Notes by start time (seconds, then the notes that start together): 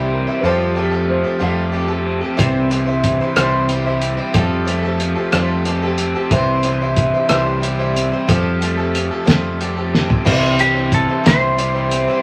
Already playing: C2 E3 G3 C4 E4 G4 C5
0.10 C4 A#4
0.27 G3 C4 E4 C5
0.40 F2 F3 B4
0.44 F3 G3 C4 G4 A4 C5
0.75 G3 A3 C4 G4 A4
0.91 C4 G4 A4
1.08 F3 C5
1.24 C4 G4 A4
1.39 F2 F3 G3 A3 C4 G4 A4 F5
1.72 G3 C4 G4 A4
1.88 C4 G4 A4
2.06 C4
2.21 C4 G4 A4
2.37 C2 C3 E3 G3 C4 E4 C5, kick, closed hi-hat
2.70 E3 G3 C4 E4 C5, closed hi-hat
2.86 G3 C4 E4 C5
3.04 E3, kick, closed hi-hat
3.20 G3 C4 E4 C5
3.36 C2 C3 E3 G3 C4 E4 C5, cross-stick, closed hi-hat
3.68 G3 C4 E4 G4 C5, closed hi-hat
3.85 G3 C4 E4 C5
4.01 C4, closed hi-hat
4.17 G3 C4 E4 C5
4.33 F2 F3 G3 C4 G4 A4, kick, closed hi-hat
4.65 G3 A3 C4 G4 A4, closed hi-hat
4.82 C4 G4 A4
5.00 F3, closed hi-hat
5.15 C4 G4 A4
5.32 F2 F3 G3 A3 C4 G4 A4, cross-stick, closed hi-hat
5.65 G3 C4 G4 A4, closed hi-hat
5.82 C4 G4 A4
5.98 C4, closed hi-hat
6.15 C4 G4 A4
6.31 C2 C3 E3 G3 C4 E4 C5, kick, closed hi-hat
6.63 E3 G3 C4 E4 C5, closed hi-hat
6.81 G3 C4 E4 C5
6.97 E3, kick, closed hi-hat
7.14 G3 C4 E4 C5
7.29 C2 C3 E3 G3 C4 E4 C5, cross-stick, closed hi-hat
7.61 G3 C4 E4 G4 C5, closed hi-hat
7.79 G3 C4 E4 C5
7.95 C4, closed hi-hat
8.12 G3 C4 E4 C5
8.27 F2 F3 G3 C4 G4 A4, kick, closed hi-hat
8.61 G3 A3 C4 G4 A4, closed hi-hat
8.77 C4 G4 A4
8.94 F3, closed hi-hat
9.11 C4 G4 A4
9.25 F2 F3 G3 A3 C4 G4 A4, snare, closed hi-hat
9.60 G3 C4 G4 A4, closed hi-hat
9.77 C4 G4 A4
9.93 C4, snare
10.08 C4 G4 A4, floor tom
10.25 C2 C3 E3 G3 C4 E4 C5, kick, crash
10.59 E3 G3 C4 E4 G4 C5, closed hi-hat
10.74 G3 C4 E4 C5
10.90 E3, kick, closed hi-hat
10.94 A4
11.08 G3 C4 E4 C5
11.24 C2 C3 E3 G3 C4 E4 C5, snare, closed hi-hat
11.57 G3 C4 E4 G4 C5, closed hi-hat
11.74 G3 C4 E4 C5
11.91 C4, closed hi-hat
12.07 G3 C4 E4 C5